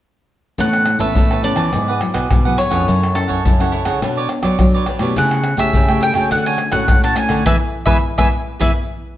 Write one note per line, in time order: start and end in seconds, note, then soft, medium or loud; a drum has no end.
0.58 1.13 A2 medium
0.58 0.95 A2 medium
0.58 0.85 E3 medium
0.58 0.86 B3 medium
0.58 0.86 C#4 soft
0.58 0.85 A4 soft
0.58 0.86 B4 soft
0.58 0.85 C#5 soft
0.58 0.99 F#5 loud
0.58 0.86 A5 medium
0.58 pandeiro medium
0.58 shaker medium
0.58 surdo medium
0.73 pandeiro soft
0.73 tamborim medium
0.73 shaker soft
0.86 muted cavaquinho stroke soft
0.86 pandeiro medium
0.86 tamborim medium
0.99 1.13 A2 medium
0.99 1.15 E3 medium
0.99 1.39 B3 medium
0.99 1.39 C#4 medium
0.99 1.14 B4 medium
0.99 1.15 C#5 medium
0.99 1.41 E5 medium
0.99 1.14 A5 medium
0.99 pandeiro medium
0.99 shaker medium
0.99 surdo soft
1.15 1.52 A2 medium
1.15 1.42 E3 soft
1.15 1.29 A4 medium
1.15 1.30 B4 medium
1.15 1.29 C#5 soft
1.15 1.30 A5 medium
1.15 pandeiro medium
1.15 shaker medium
1.15 surdo loud
1.31 1.44 B4 medium
1.31 1.43 C#5 medium
1.31 1.44 A5 medium
1.31 pandeiro soft
1.31 tamborim medium
1.31 shaker soft
1.43 1.68 E3 soft
1.43 1.68 B3 medium
1.43 1.68 C#4 medium
1.43 1.57 A4 medium
1.43 1.57 B4 medium
1.43 1.57 C#5 medium
1.43 2.58 D5 medium
1.43 1.56 A5 medium
1.43 pandeiro medium
1.43 shaker medium
1.43 surdo soft
1.56 1.70 E3 medium
1.56 1.71 B4 medium
1.56 1.72 C#5 medium
1.56 1.71 A5 medium
1.56 pandeiro medium
1.56 tamborim medium
1.56 shaker medium
1.73 1.97 G#2 medium
1.73 2.28 G#2 medium
1.73 1.90 F#3 soft
1.73 1.90 B3 soft
1.73 1.86 E4 medium
1.73 1.90 E4 medium
1.73 1.87 G#4 medium
1.73 1.87 B4 medium
1.73 1.87 F#5 medium
1.73 pandeiro medium
1.73 tamborim medium
1.73 shaker medium
1.73 surdo soft
1.88 2.00 G#4 medium
1.88 2.00 B4 medium
1.88 2.00 F#5 medium
1.88 pandeiro soft
1.88 shaker soft
2.01 2.39 F#3 medium
2.01 2.40 B3 medium
2.01 2.40 E4 medium
2.01 muted cavaquinho stroke soft
2.01 pandeiro medium
2.01 tamborim medium
2.01 shaker medium
2.14 2.27 B2 medium
2.14 2.43 G#4 soft
2.14 2.43 B4 medium
2.14 2.42 F#5 medium
2.14 pandeiro medium
2.14 tamborim medium
2.14 shaker medium
2.14 surdo soft
2.31 2.85 G#2 medium
2.31 2.55 B2 medium
2.31 pandeiro medium
2.31 tamborim medium
2.31 shaker medium
2.31 surdo loud
2.45 2.69 F#3 medium
2.45 2.69 B3 medium
2.45 2.70 E4 medium
2.45 2.57 G#4 medium
2.45 2.57 B4 medium
2.45 2.58 F#5 medium
2.45 pandeiro soft
2.45 shaker soft
2.57 2.71 E4 soft
2.57 2.72 G#4 soft
2.57 2.70 B4 soft
2.57 3.17 C#5 medium
2.57 2.69 F#5 medium
2.57 pandeiro medium
2.57 tamborim medium
2.71 2.84 F2 medium
2.71 3.14 C#4 medium
2.71 3.14 E4 medium
2.71 2.86 G#4 medium
2.71 3.14 A4 medium
2.71 2.86 B4 medium
2.71 2.85 F#5 medium
2.71 pandeiro medium
2.71 tamborim medium
2.71 shaker medium
2.71 surdo soft
2.87 3.24 F#2 loud
2.87 3.42 F#3 medium
2.87 3.14 E4 medium
2.87 3.14 A4 soft
2.87 3.15 C#5 medium
2.87 3.15 F#5 medium
2.87 pandeiro medium
2.87 shaker medium
2.87 surdo medium
3.03 pandeiro soft
3.03 tamborim medium
3.03 shaker soft
3.15 3.40 C#4 medium
3.15 3.40 E4 medium
3.15 4.83 A4 medium
3.15 3.40 A4 medium
3.15 muted cavaquinho stroke soft
3.15 pandeiro medium
3.15 tamborim medium
3.28 3.42 F#2 medium
3.28 3.43 A4 medium
3.28 3.43 C#5 medium
3.28 3.42 F#5 medium
3.28 pandeiro medium
3.28 shaker medium
3.28 surdo soft
3.45 3.82 F#2 loud
3.45 3.99 C#3 medium
3.45 3.53 C#4 medium
3.45 3.58 E4 soft
3.45 3.54 E4 medium
3.45 3.58 A4 soft
3.45 3.54 A4 medium
3.45 3.58 C#5 medium
3.45 3.59 F#5 medium
3.45 pandeiro medium
3.45 shaker medium
3.45 surdo medium
3.59 3.98 C#4 medium
3.59 3.98 E4 medium
3.59 3.98 A4 medium
3.59 3.71 A4 medium
3.59 3.72 C#5 medium
3.59 3.73 F#5 medium
3.59 pandeiro soft
3.59 tamborim medium
3.59 shaker soft
3.72 3.86 E4 medium
3.72 3.86 A4 medium
3.72 3.85 C#5 medium
3.72 3.85 F#5 medium
3.72 pandeiro medium
3.72 shaker medium
3.72 surdo soft
3.85 3.99 C#3 medium
3.85 4.01 A4 medium
3.85 4.00 C#5 medium
3.85 4.00 F#5 medium
3.85 pandeiro medium
3.85 tamborim medium
3.85 shaker medium
4.02 4.26 B2 medium
4.02 4.56 B3 soft
4.02 4.39 D4 medium
4.02 4.15 D4 soft
4.02 4.39 F#4 medium
4.02 4.15 B4 medium
4.02 4.39 C#5 medium
4.02 4.16 C#5 medium
4.02 4.16 D5 medium
4.02 pandeiro medium
4.02 tamborim medium
4.02 shaker medium
4.02 surdo medium
4.17 4.29 B4 medium
4.17 4.30 C#5 medium
4.17 4.30 D5 medium
4.17 pandeiro soft
4.17 shaker soft
4.29 muted cavaquinho stroke soft
4.29 pandeiro medium
4.29 tamborim medium
4.29 shaker medium
4.43 4.56 F#3 medium
4.43 4.72 B4 medium
4.43 4.72 C#5 medium
4.43 4.72 D5 medium
4.43 pandeiro medium
4.43 tamborim medium
4.43 shaker medium
4.43 surdo soft
4.58 5.13 F#3 medium
4.58 4.84 F#3 medium
4.58 4.86 D4 medium
4.58 4.86 F#4 medium
4.58 4.86 C#5 medium
4.58 pandeiro medium
4.58 tamborim medium
4.58 shaker medium
4.58 surdo loud
4.74 4.87 B4 medium
4.74 4.88 C#5 medium
4.74 4.87 D5 medium
4.74 pandeiro soft
4.74 shaker soft
4.86 5.01 D4 soft
4.86 5.01 B4 soft
4.86 5.00 C#5 soft
4.86 4.99 D5 medium
4.86 pandeiro medium
4.86 tamborim medium
4.86 shaker medium
4.86 surdo soft
4.99 5.13 B2 medium
4.99 5.39 A3 medium
4.99 5.39 E4 medium
4.99 5.40 G4 medium
4.99 5.15 B4 soft
4.99 5.15 C#5 medium
4.99 5.15 D5 medium
4.99 pandeiro medium
4.99 tamborim medium
4.99 shaker medium
4.99 surdo soft
5.16 5.71 C#3 medium
5.16 5.53 C#3 loud
5.16 5.43 E4 soft
5.16 5.43 A4 medium
5.16 5.43 C#5 medium
5.16 5.59 F#5 medium
5.16 5.43 G5 medium
5.16 pandeiro medium
5.16 shaker medium
5.16 surdo medium
5.31 pandeiro soft
5.31 tamborim medium
5.31 shaker soft
5.44 muted cavaquinho stroke soft
5.44 pandeiro medium
5.44 tamborim medium
5.44 shaker medium
5.57 5.71 C#3 medium
5.57 5.82 A3 soft
5.57 5.82 E4 medium
5.57 5.83 G4 medium
5.57 5.73 A4 soft
5.57 5.72 C#5 medium
5.57 6.02 E5 medium
5.57 5.72 G5 medium
5.57 pandeiro medium
5.57 shaker medium
5.57 surdo soft
5.73 6.28 C#3 soft
5.73 6.11 C#3 loud
5.73 5.87 E4 medium
5.73 5.87 A4 medium
5.73 5.88 C#5 medium
5.73 5.88 G5 medium
5.73 pandeiro medium
5.73 shaker medium
5.73 surdo medium
5.88 6.12 A3 medium
5.88 6.13 E4 medium
5.88 6.13 G4 medium
5.88 6.01 A4 soft
5.88 6.02 C#5 medium
5.88 6.02 G5 medium
5.88 pandeiro soft
5.88 tamborim medium
5.88 shaker soft
6.01 6.15 E4 medium
6.01 6.15 A4 medium
6.01 6.15 C#5 medium
6.01 6.31 G5 medium
6.01 6.14 G5 medium
6.01 pandeiro medium
6.01 shaker medium
6.01 surdo soft
6.14 6.28 C#3 medium
6.14 6.68 A3 medium
6.14 6.68 C#4 medium
6.14 6.69 F#4 medium
6.14 6.30 A4 medium
6.14 6.29 C#5 medium
6.14 6.29 G5 medium
6.14 pandeiro medium
6.14 tamborim medium
6.14 shaker medium
6.31 6.85 D3 medium
6.31 6.56 D3 medium
6.31 6.44 D4 medium
6.31 6.45 A4 medium
6.31 6.45 C#5 medium
6.31 6.45 F#5 medium
6.31 pandeiro medium
6.31 tamborim medium
6.31 shaker medium
6.31 surdo medium
6.46 6.59 A4 medium
6.46 6.60 C#5 medium
6.46 6.59 F#5 medium
6.46 6.72 G#5 medium
6.46 pandeiro soft
6.46 shaker soft
6.58 muted cavaquinho stroke soft
6.58 pandeiro medium
6.58 tamborim medium
6.72 6.85 A2 medium
6.72 6.97 A3 medium
6.72 6.97 C#4 medium
6.72 6.97 F#4 medium
6.72 7.02 A4 medium
6.72 7.01 C#5 medium
6.72 7.00 F#5 medium
6.72 7.01 F#5 medium
6.72 pandeiro medium
6.72 tamborim medium
6.72 shaker medium
6.72 surdo soft
6.88 7.43 A2 medium
6.88 7.13 A2 medium
6.88 pandeiro medium
6.88 tamborim medium
6.88 shaker medium
6.88 surdo loud
7.03 7.41 A3 medium
7.03 7.42 C#4 medium
7.03 7.42 F#4 medium
7.03 7.16 A4 medium
7.03 7.16 C#5 medium
7.03 7.16 F#5 medium
7.03 7.16 A5 medium
7.03 pandeiro soft
7.03 shaker soft
7.16 7.30 D4 soft
7.16 7.30 A4 medium
7.16 7.30 C#5 soft
7.16 7.28 F#5 medium
7.16 7.43 G#5 medium
7.16 pandeiro medium
7.16 tamborim medium
7.16 shaker medium
7.29 7.43 D3 medium
7.29 7.45 A4 medium
7.29 7.44 C#5 medium
7.29 7.44 F#5 medium
7.29 pandeiro medium
7.29 tamborim medium
7.29 shaker medium
7.29 surdo soft
7.45 7.57 E3 loud
7.45 7.55 G#3 medium
7.45 7.55 B3 medium
7.45 7.55 E4 medium
7.45 7.55 G#4 loud
7.45 7.55 B4 loud
7.45 7.55 E5 medium
7.45 7.55 G#5 medium
7.45 surdo medium
7.86 7.98 E3 medium
7.86 7.97 G#3 medium
7.86 7.97 B3 medium
7.86 7.97 E4 medium
7.86 7.96 G#4 medium
7.86 7.97 B4 medium
7.86 7.96 B4 medium
7.86 7.96 E5 medium
7.86 7.97 E5 loud
7.86 7.96 G#5 medium
7.86 surdo loud
8.18 8.29 E3 medium
8.18 8.27 G#3 medium
8.18 8.27 B3 loud
8.18 8.27 E4 medium
8.18 8.27 G#4 medium
8.18 8.27 B4 medium
8.18 8.27 E5 medium
8.18 8.27 G#5 medium
8.18 surdo medium
8.59 8.71 E3 medium
8.59 8.70 G#3 medium
8.59 8.70 B3 medium
8.59 8.70 E4 medium
8.59 8.69 G#4 loud
8.59 8.69 B4 medium
8.59 8.70 B4 loud
8.59 8.69 E5 medium
8.59 8.70 E5 medium
8.59 8.70 G#5 medium
8.59 surdo medium